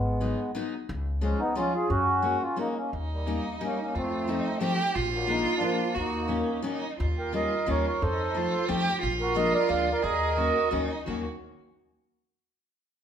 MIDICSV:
0, 0, Header, 1, 5, 480
1, 0, Start_track
1, 0, Key_signature, -6, "minor"
1, 0, Tempo, 338983
1, 1255, Time_signature, 3, 2, 24, 8
1, 14211, Tempo, 344432
1, 18395, End_track
2, 0, Start_track
2, 0, Title_t, "Violin"
2, 0, Program_c, 0, 40
2, 4128, Note_on_c, 0, 63, 75
2, 5589, Note_on_c, 0, 65, 74
2, 5610, Note_off_c, 0, 63, 0
2, 6072, Note_on_c, 0, 63, 93
2, 6094, Note_off_c, 0, 65, 0
2, 6508, Note_off_c, 0, 63, 0
2, 6517, Note_on_c, 0, 67, 118
2, 7011, Note_on_c, 0, 65, 112
2, 7033, Note_off_c, 0, 67, 0
2, 8413, Note_on_c, 0, 66, 84
2, 8435, Note_off_c, 0, 65, 0
2, 8902, Note_on_c, 0, 61, 67
2, 8923, Note_off_c, 0, 66, 0
2, 9397, Note_off_c, 0, 61, 0
2, 9411, Note_on_c, 0, 63, 83
2, 9868, Note_off_c, 0, 63, 0
2, 9909, Note_on_c, 0, 65, 66
2, 11357, Note_on_c, 0, 63, 78
2, 11379, Note_off_c, 0, 65, 0
2, 11852, Note_on_c, 0, 65, 92
2, 11873, Note_off_c, 0, 63, 0
2, 12302, Note_on_c, 0, 67, 115
2, 12323, Note_off_c, 0, 65, 0
2, 12749, Note_off_c, 0, 67, 0
2, 12758, Note_on_c, 0, 65, 100
2, 14189, Note_on_c, 0, 68, 88
2, 14210, Note_off_c, 0, 65, 0
2, 14683, Note_on_c, 0, 66, 83
2, 14703, Note_off_c, 0, 68, 0
2, 15171, Note_on_c, 0, 63, 84
2, 15192, Note_off_c, 0, 66, 0
2, 15637, Note_off_c, 0, 63, 0
2, 15645, Note_on_c, 0, 66, 59
2, 15893, Note_off_c, 0, 66, 0
2, 18395, End_track
3, 0, Start_track
3, 0, Title_t, "Accordion"
3, 0, Program_c, 1, 21
3, 0, Note_on_c, 1, 56, 84
3, 0, Note_on_c, 1, 59, 89
3, 724, Note_off_c, 1, 56, 0
3, 728, Note_off_c, 1, 59, 0
3, 1725, Note_on_c, 1, 56, 66
3, 1728, Note_on_c, 1, 61, 90
3, 1962, Note_off_c, 1, 56, 0
3, 1972, Note_on_c, 1, 63, 117
3, 1977, Note_on_c, 1, 59, 81
3, 1988, Note_off_c, 1, 61, 0
3, 2180, Note_off_c, 1, 59, 0
3, 2199, Note_off_c, 1, 63, 0
3, 2215, Note_on_c, 1, 61, 75
3, 2220, Note_on_c, 1, 65, 103
3, 2446, Note_off_c, 1, 61, 0
3, 2454, Note_off_c, 1, 65, 0
3, 2474, Note_on_c, 1, 68, 101
3, 2475, Note_on_c, 1, 65, 86
3, 2667, Note_off_c, 1, 65, 0
3, 2687, Note_off_c, 1, 68, 0
3, 2687, Note_on_c, 1, 61, 99
3, 2689, Note_on_c, 1, 66, 122
3, 3368, Note_off_c, 1, 61, 0
3, 3424, Note_on_c, 1, 61, 87
3, 3432, Note_on_c, 1, 65, 96
3, 3442, Note_off_c, 1, 66, 0
3, 3629, Note_off_c, 1, 61, 0
3, 3655, Note_off_c, 1, 65, 0
3, 3661, Note_on_c, 1, 58, 77
3, 3677, Note_on_c, 1, 63, 93
3, 3883, Note_off_c, 1, 58, 0
3, 3904, Note_on_c, 1, 58, 69
3, 3914, Note_on_c, 1, 61, 85
3, 3935, Note_off_c, 1, 63, 0
3, 4116, Note_off_c, 1, 58, 0
3, 4121, Note_off_c, 1, 61, 0
3, 4428, Note_on_c, 1, 55, 57
3, 4430, Note_on_c, 1, 58, 78
3, 4613, Note_off_c, 1, 58, 0
3, 4622, Note_off_c, 1, 55, 0
3, 4634, Note_on_c, 1, 58, 59
3, 4642, Note_on_c, 1, 63, 77
3, 5025, Note_off_c, 1, 58, 0
3, 5048, Note_off_c, 1, 63, 0
3, 5070, Note_on_c, 1, 63, 52
3, 5114, Note_off_c, 1, 63, 0
3, 5144, Note_on_c, 1, 58, 67
3, 5146, Note_on_c, 1, 61, 94
3, 5367, Note_off_c, 1, 58, 0
3, 5379, Note_off_c, 1, 61, 0
3, 5400, Note_on_c, 1, 61, 71
3, 5401, Note_on_c, 1, 58, 61
3, 5588, Note_off_c, 1, 58, 0
3, 5588, Note_off_c, 1, 61, 0
3, 5619, Note_on_c, 1, 60, 100
3, 5621, Note_on_c, 1, 57, 72
3, 6494, Note_off_c, 1, 60, 0
3, 6495, Note_off_c, 1, 57, 0
3, 7281, Note_on_c, 1, 54, 73
3, 7282, Note_on_c, 1, 58, 90
3, 7469, Note_off_c, 1, 58, 0
3, 7476, Note_off_c, 1, 54, 0
3, 7490, Note_on_c, 1, 58, 78
3, 7496, Note_on_c, 1, 63, 93
3, 7828, Note_off_c, 1, 58, 0
3, 7860, Note_on_c, 1, 58, 64
3, 7868, Note_off_c, 1, 63, 0
3, 7883, Note_on_c, 1, 62, 95
3, 7956, Note_off_c, 1, 58, 0
3, 7963, Note_on_c, 1, 53, 65
3, 7978, Note_off_c, 1, 62, 0
3, 7986, Note_on_c, 1, 58, 99
3, 8405, Note_off_c, 1, 53, 0
3, 8437, Note_off_c, 1, 58, 0
3, 8458, Note_on_c, 1, 58, 85
3, 8483, Note_on_c, 1, 63, 103
3, 9360, Note_off_c, 1, 58, 0
3, 9372, Note_off_c, 1, 63, 0
3, 10157, Note_on_c, 1, 67, 74
3, 10183, Note_on_c, 1, 70, 87
3, 10370, Note_off_c, 1, 67, 0
3, 10382, Note_off_c, 1, 70, 0
3, 10403, Note_on_c, 1, 70, 64
3, 10408, Note_on_c, 1, 75, 92
3, 10847, Note_off_c, 1, 70, 0
3, 10898, Note_off_c, 1, 75, 0
3, 10905, Note_on_c, 1, 73, 100
3, 10908, Note_on_c, 1, 70, 77
3, 11126, Note_off_c, 1, 73, 0
3, 11132, Note_off_c, 1, 70, 0
3, 11148, Note_on_c, 1, 73, 89
3, 11153, Note_on_c, 1, 70, 66
3, 11348, Note_off_c, 1, 70, 0
3, 11355, Note_on_c, 1, 72, 104
3, 11356, Note_on_c, 1, 69, 74
3, 11367, Note_off_c, 1, 73, 0
3, 12250, Note_off_c, 1, 69, 0
3, 12250, Note_off_c, 1, 72, 0
3, 13037, Note_on_c, 1, 70, 88
3, 13059, Note_on_c, 1, 66, 72
3, 13252, Note_off_c, 1, 66, 0
3, 13255, Note_off_c, 1, 70, 0
3, 13260, Note_on_c, 1, 75, 109
3, 13276, Note_on_c, 1, 70, 73
3, 13495, Note_off_c, 1, 70, 0
3, 13499, Note_off_c, 1, 75, 0
3, 13506, Note_on_c, 1, 74, 116
3, 13516, Note_on_c, 1, 70, 97
3, 13718, Note_off_c, 1, 74, 0
3, 13719, Note_off_c, 1, 70, 0
3, 13722, Note_on_c, 1, 77, 98
3, 13739, Note_on_c, 1, 74, 83
3, 14021, Note_off_c, 1, 74, 0
3, 14042, Note_on_c, 1, 74, 99
3, 14046, Note_on_c, 1, 70, 75
3, 14056, Note_off_c, 1, 77, 0
3, 14191, Note_off_c, 1, 70, 0
3, 14212, Note_off_c, 1, 74, 0
3, 14212, Note_on_c, 1, 75, 113
3, 14213, Note_on_c, 1, 70, 81
3, 15116, Note_off_c, 1, 70, 0
3, 15116, Note_off_c, 1, 75, 0
3, 18395, End_track
4, 0, Start_track
4, 0, Title_t, "Steel-string acoustic guitar"
4, 0, Program_c, 2, 25
4, 291, Note_on_c, 2, 54, 65
4, 297, Note_on_c, 2, 56, 48
4, 299, Note_on_c, 2, 63, 69
4, 308, Note_on_c, 2, 59, 46
4, 556, Note_off_c, 2, 56, 0
4, 557, Note_off_c, 2, 54, 0
4, 560, Note_off_c, 2, 59, 0
4, 560, Note_off_c, 2, 63, 0
4, 774, Note_on_c, 2, 54, 91
4, 783, Note_on_c, 2, 56, 62
4, 788, Note_on_c, 2, 59, 77
4, 795, Note_on_c, 2, 63, 89
4, 1036, Note_off_c, 2, 54, 0
4, 1037, Note_off_c, 2, 56, 0
4, 1041, Note_off_c, 2, 59, 0
4, 1045, Note_off_c, 2, 63, 0
4, 1717, Note_on_c, 2, 53, 71
4, 1723, Note_on_c, 2, 56, 65
4, 1728, Note_on_c, 2, 61, 56
4, 1740, Note_on_c, 2, 65, 65
4, 1975, Note_off_c, 2, 56, 0
4, 1977, Note_off_c, 2, 53, 0
4, 1982, Note_off_c, 2, 61, 0
4, 1984, Note_off_c, 2, 65, 0
4, 2200, Note_on_c, 2, 53, 77
4, 2207, Note_on_c, 2, 56, 67
4, 2214, Note_on_c, 2, 61, 61
4, 2224, Note_on_c, 2, 65, 81
4, 2457, Note_off_c, 2, 53, 0
4, 2457, Note_off_c, 2, 56, 0
4, 2463, Note_off_c, 2, 61, 0
4, 2467, Note_off_c, 2, 65, 0
4, 3148, Note_on_c, 2, 56, 67
4, 3151, Note_on_c, 2, 58, 54
4, 3158, Note_on_c, 2, 61, 55
4, 3171, Note_on_c, 2, 66, 61
4, 3411, Note_off_c, 2, 56, 0
4, 3415, Note_off_c, 2, 58, 0
4, 3415, Note_off_c, 2, 61, 0
4, 3416, Note_off_c, 2, 66, 0
4, 3628, Note_on_c, 2, 56, 61
4, 3636, Note_on_c, 2, 58, 66
4, 3645, Note_on_c, 2, 61, 62
4, 3650, Note_on_c, 2, 66, 57
4, 3902, Note_off_c, 2, 56, 0
4, 3906, Note_off_c, 2, 58, 0
4, 3911, Note_off_c, 2, 61, 0
4, 3911, Note_off_c, 2, 66, 0
4, 4619, Note_on_c, 2, 58, 50
4, 4627, Note_on_c, 2, 61, 43
4, 4633, Note_on_c, 2, 55, 58
4, 4637, Note_on_c, 2, 63, 78
4, 4883, Note_off_c, 2, 55, 0
4, 4884, Note_off_c, 2, 58, 0
4, 4884, Note_off_c, 2, 61, 0
4, 4891, Note_off_c, 2, 63, 0
4, 5096, Note_on_c, 2, 58, 53
4, 5106, Note_on_c, 2, 61, 53
4, 5110, Note_on_c, 2, 55, 70
4, 5110, Note_on_c, 2, 63, 82
4, 5361, Note_off_c, 2, 55, 0
4, 5362, Note_off_c, 2, 58, 0
4, 5363, Note_off_c, 2, 61, 0
4, 5367, Note_off_c, 2, 63, 0
4, 6053, Note_on_c, 2, 53, 66
4, 6061, Note_on_c, 2, 57, 55
4, 6068, Note_on_c, 2, 60, 58
4, 6073, Note_on_c, 2, 63, 84
4, 6313, Note_off_c, 2, 53, 0
4, 6318, Note_off_c, 2, 57, 0
4, 6318, Note_off_c, 2, 60, 0
4, 6323, Note_off_c, 2, 63, 0
4, 6520, Note_on_c, 2, 53, 88
4, 6531, Note_on_c, 2, 57, 89
4, 6538, Note_on_c, 2, 60, 74
4, 6545, Note_on_c, 2, 63, 91
4, 6782, Note_off_c, 2, 53, 0
4, 6789, Note_off_c, 2, 57, 0
4, 6789, Note_off_c, 2, 60, 0
4, 6795, Note_off_c, 2, 63, 0
4, 7461, Note_on_c, 2, 53, 58
4, 7467, Note_on_c, 2, 58, 54
4, 7472, Note_on_c, 2, 56, 55
4, 7481, Note_on_c, 2, 62, 67
4, 7731, Note_off_c, 2, 53, 0
4, 7734, Note_off_c, 2, 56, 0
4, 7735, Note_off_c, 2, 58, 0
4, 7738, Note_off_c, 2, 62, 0
4, 7931, Note_on_c, 2, 53, 71
4, 7940, Note_on_c, 2, 56, 62
4, 7942, Note_on_c, 2, 58, 69
4, 7955, Note_on_c, 2, 62, 68
4, 8204, Note_off_c, 2, 53, 0
4, 8204, Note_off_c, 2, 56, 0
4, 8209, Note_off_c, 2, 58, 0
4, 8211, Note_off_c, 2, 62, 0
4, 8890, Note_on_c, 2, 51, 60
4, 8902, Note_on_c, 2, 54, 52
4, 8904, Note_on_c, 2, 58, 46
4, 8918, Note_on_c, 2, 61, 50
4, 9168, Note_off_c, 2, 51, 0
4, 9170, Note_off_c, 2, 54, 0
4, 9174, Note_off_c, 2, 58, 0
4, 9176, Note_off_c, 2, 61, 0
4, 9380, Note_on_c, 2, 51, 84
4, 9388, Note_on_c, 2, 54, 77
4, 9397, Note_on_c, 2, 58, 57
4, 9402, Note_on_c, 2, 61, 96
4, 9660, Note_off_c, 2, 51, 0
4, 9665, Note_off_c, 2, 54, 0
4, 9667, Note_off_c, 2, 58, 0
4, 9671, Note_off_c, 2, 61, 0
4, 10372, Note_on_c, 2, 51, 64
4, 10385, Note_on_c, 2, 55, 56
4, 10388, Note_on_c, 2, 58, 53
4, 10394, Note_on_c, 2, 61, 78
4, 10645, Note_off_c, 2, 51, 0
4, 10650, Note_off_c, 2, 58, 0
4, 10652, Note_off_c, 2, 55, 0
4, 10656, Note_off_c, 2, 61, 0
4, 10852, Note_on_c, 2, 51, 75
4, 10861, Note_on_c, 2, 55, 69
4, 10869, Note_on_c, 2, 58, 51
4, 10871, Note_on_c, 2, 61, 76
4, 11123, Note_off_c, 2, 51, 0
4, 11129, Note_off_c, 2, 55, 0
4, 11129, Note_off_c, 2, 58, 0
4, 11132, Note_off_c, 2, 61, 0
4, 11816, Note_on_c, 2, 53, 66
4, 11821, Note_on_c, 2, 57, 69
4, 11833, Note_on_c, 2, 60, 55
4, 11838, Note_on_c, 2, 63, 62
4, 12081, Note_off_c, 2, 53, 0
4, 12086, Note_off_c, 2, 57, 0
4, 12087, Note_off_c, 2, 63, 0
4, 12088, Note_off_c, 2, 60, 0
4, 12298, Note_on_c, 2, 53, 87
4, 12299, Note_on_c, 2, 57, 78
4, 12308, Note_on_c, 2, 60, 68
4, 12318, Note_on_c, 2, 63, 88
4, 12557, Note_off_c, 2, 53, 0
4, 12560, Note_off_c, 2, 57, 0
4, 12560, Note_off_c, 2, 60, 0
4, 12562, Note_off_c, 2, 63, 0
4, 13234, Note_on_c, 2, 53, 72
4, 13245, Note_on_c, 2, 56, 55
4, 13248, Note_on_c, 2, 58, 63
4, 13256, Note_on_c, 2, 62, 89
4, 13504, Note_off_c, 2, 53, 0
4, 13507, Note_off_c, 2, 56, 0
4, 13510, Note_off_c, 2, 58, 0
4, 13514, Note_off_c, 2, 62, 0
4, 13711, Note_on_c, 2, 53, 71
4, 13718, Note_on_c, 2, 56, 64
4, 13722, Note_on_c, 2, 58, 70
4, 13730, Note_on_c, 2, 62, 63
4, 13981, Note_off_c, 2, 53, 0
4, 13983, Note_off_c, 2, 56, 0
4, 13987, Note_off_c, 2, 58, 0
4, 13988, Note_off_c, 2, 62, 0
4, 14667, Note_on_c, 2, 51, 60
4, 14670, Note_on_c, 2, 54, 49
4, 14682, Note_on_c, 2, 58, 50
4, 14693, Note_on_c, 2, 61, 70
4, 14938, Note_off_c, 2, 51, 0
4, 14943, Note_off_c, 2, 54, 0
4, 14944, Note_off_c, 2, 58, 0
4, 14946, Note_off_c, 2, 61, 0
4, 15148, Note_on_c, 2, 51, 81
4, 15155, Note_on_c, 2, 54, 67
4, 15162, Note_on_c, 2, 58, 57
4, 15169, Note_on_c, 2, 61, 92
4, 15425, Note_off_c, 2, 51, 0
4, 15429, Note_off_c, 2, 54, 0
4, 15430, Note_off_c, 2, 58, 0
4, 15435, Note_off_c, 2, 61, 0
4, 15639, Note_on_c, 2, 51, 81
4, 15654, Note_on_c, 2, 54, 60
4, 15659, Note_on_c, 2, 58, 67
4, 15667, Note_on_c, 2, 61, 70
4, 15895, Note_off_c, 2, 51, 0
4, 15896, Note_off_c, 2, 58, 0
4, 15896, Note_off_c, 2, 61, 0
4, 15897, Note_off_c, 2, 54, 0
4, 18395, End_track
5, 0, Start_track
5, 0, Title_t, "Upright bass"
5, 0, Program_c, 3, 32
5, 0, Note_on_c, 3, 32, 88
5, 439, Note_off_c, 3, 32, 0
5, 1263, Note_on_c, 3, 37, 109
5, 1872, Note_off_c, 3, 37, 0
5, 2689, Note_on_c, 3, 42, 92
5, 3311, Note_off_c, 3, 42, 0
5, 4149, Note_on_c, 3, 39, 88
5, 4774, Note_off_c, 3, 39, 0
5, 5598, Note_on_c, 3, 41, 88
5, 6210, Note_off_c, 3, 41, 0
5, 7019, Note_on_c, 3, 34, 107
5, 7634, Note_off_c, 3, 34, 0
5, 8440, Note_on_c, 3, 39, 95
5, 9069, Note_off_c, 3, 39, 0
5, 9911, Note_on_c, 3, 39, 100
5, 10541, Note_off_c, 3, 39, 0
5, 10872, Note_on_c, 3, 39, 73
5, 11185, Note_off_c, 3, 39, 0
5, 11357, Note_on_c, 3, 41, 91
5, 11975, Note_off_c, 3, 41, 0
5, 12316, Note_on_c, 3, 41, 78
5, 12620, Note_off_c, 3, 41, 0
5, 12785, Note_on_c, 3, 34, 97
5, 13403, Note_off_c, 3, 34, 0
5, 13734, Note_on_c, 3, 38, 70
5, 14045, Note_off_c, 3, 38, 0
5, 14213, Note_on_c, 3, 39, 100
5, 14837, Note_off_c, 3, 39, 0
5, 15171, Note_on_c, 3, 39, 70
5, 15488, Note_off_c, 3, 39, 0
5, 15659, Note_on_c, 3, 39, 81
5, 15900, Note_off_c, 3, 39, 0
5, 18395, End_track
0, 0, End_of_file